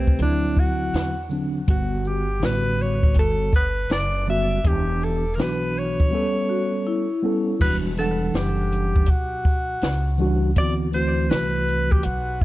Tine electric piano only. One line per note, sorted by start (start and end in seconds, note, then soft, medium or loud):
0.00 0.23 C3 medium
0.00 0.20 A3 medium
0.00 0.21 G4 medium
0.00 0.21 B4 medium
0.19 1.13 D3 medium
0.19 1.13 F#3 medium
0.19 1.14 C4 medium
0.19 1.14 E4 medium
1.29 1.60 D3 medium
1.29 1.61 F#3 medium
1.29 1.61 C4 medium
1.29 1.62 D4 medium
1.66 2.26 D3 medium
1.66 2.26 G3 medium
1.66 2.27 B3 medium
1.66 2.28 F#4 medium
2.40 3.49 D3 medium
2.40 3.50 G3 medium
2.40 3.51 B3 medium
2.44 3.51 F#4 medium
4.26 4.57 D3 medium
4.26 4.57 G3 medium
4.26 4.58 B3 medium
4.26 4.59 F#4 medium
4.64 5.23 E3 medium
4.64 5.23 B3 medium
4.64 5.24 D4 medium
4.64 5.24 G4 medium
5.38 6.12 E3 medium
5.38 6.11 B3 medium
5.38 6.13 D4 medium
5.38 6.14 F#4 medium
6.11 7.05 G3 medium
6.11 7.06 B3 medium
6.11 7.06 C#4 medium
6.11 7.07 A4 medium
7.22 7.53 G3 medium
7.22 7.53 B3 medium
7.22 7.54 C#4 medium
7.22 7.55 A4 medium
7.59 7.90 E3 medium
7.59 7.91 G3 medium
7.59 7.91 D4 medium
7.59 7.92 F#4 medium
7.97 9.05 E3 medium
7.97 8.06 F#3 soft
7.97 9.07 D4 medium
7.97 9.07 F#5 medium
8.04 9.09 G3 medium
10.18 10.49 E3 medium
10.18 10.49 G3 medium
10.18 10.50 D4 medium
10.18 10.51 F#4 medium
10.56 10.86 E3 medium
10.56 10.87 B3 medium
10.56 10.87 C4 medium
10.56 10.88 F#4 medium
10.92 12.01 E3 medium
10.92 12.02 A3 medium
10.92 12.03 C4 medium
10.92 12.03 F#4 medium